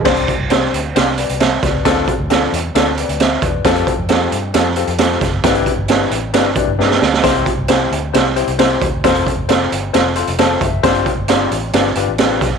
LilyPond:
<<
  \new Staff \with { instrumentName = "Grand piano" } { \time 4/4 \key c \major \tempo 4 = 134 << { r2 r8 <b' d''>8 <c'' e''>8 <b' d''>8~ | <b' d''>8 r2 <b' d''>8 <c'' e''>8 <b' d''>8~ | <b' d''>8 r2. r8 | r1 |
r1 | r2. a''8 e''8 | r1 | } \\ { <c' d' g' c''>8 r8 <c' d' g' c''>8 r8 <c' d' g' c''>8 r4. | <c' d' f' a'>8 r8 <c' d' f' a'>8 r8 <c' d' f' a'>8 r4. | <c' f' g' a'>8 r8 <c' f' g' a'>8 r8 <c' f' g' a'>8 <c' f' g' a'>8 <c' f' g' a'>8 r8 | <d' e' g' b'>8 r8 <d' e' g' b'>8 r8 <d' e' g' b'>8 <d' e' g' b'>8 <d' e' g' b'>8 r8 |
<c' e' g' c''>8 r8 <c' e' g' c''>8 r8 <c' e' g' c''>8 <c' e' g' c''>8 <c' e' g' c''>8 r8 | <c' f' a' c''>8 r8 <c' f' a' c''>8 r8 <c' f' a' c''>8 <c' f' a' c''>8 <c' f' a' c''>8 r8 | <d' f' g' c''>8 r8 <d' f' g' c''>8 r8 <d' f' g' b'>8 <d' f' g' b'>8 <d' f' g' b'>8 r8 | } >> }
  \new Staff \with { instrumentName = "Fingered electric bass" } { \clef bass \time 4/4 \key c \major c,8 r16 c,8. d,8 c,8. c,8. des,8 | d,8 r16 d,8. e,8 d,8. d,8. e,8 | f,8 r16 f,8. g,8 f,8. f,8. fis,,8 | g,,8 r16 g,,8. a,,8 g,,8. g,,16 g,8 d,8 |
c,8 r16 c,8. d,8 c,8. c,8. d,8 | f,,8 r16 f,,8. g,,8 f,,8. f,,8. fis,,8 | g,,8 r16 g,,8. a,,8 g,,8 g,,16 a,,8. b,,8 | }
  \new DrumStaff \with { instrumentName = "Drums" } \drummode { \time 4/4 <cymc bd sn>16 hh16 <hh bd>8 <hh sn>8 hh8 <hh sn>8 hh16 hh16 <hh sn>8 <hh bd sn>8 | <hh bd sn>8 <hh bd>8 <hh sn>8 hh8 <hh sn>8 hh16 hh16 <hh sn>8 <hh bd>8 | <hh bd sn>16 hh16 <hh bd>8 <hh sn>8 hh8 <hh sn>8 hh16 hh16 <hh sn>8 <hh bd sn>8 | <hh bd sn>16 hh16 <hh bd>8 <hh sn>8 hh8 <hh sn>8 <hh bd>8 sn16 sn16 sn16 sn16 |
<hh bd sn>16 hh16 <hh bd>8 <hh sn>8 hh8 <hh sn>8 hh16 hh16 <hh sn>8 <hh bd>8 | <hh bd sn>16 hh16 <hh bd>8 <hh sn>8 hh8 <hh sn>8 hh16 hh16 <hh sn>8 <hh bd>8 | <hh bd sn>16 hh16 <hh bd>8 <hh sn>8 hh8 <hh sn>8 hh8 <hh sn>8 <hh bd sn>8 | }
>>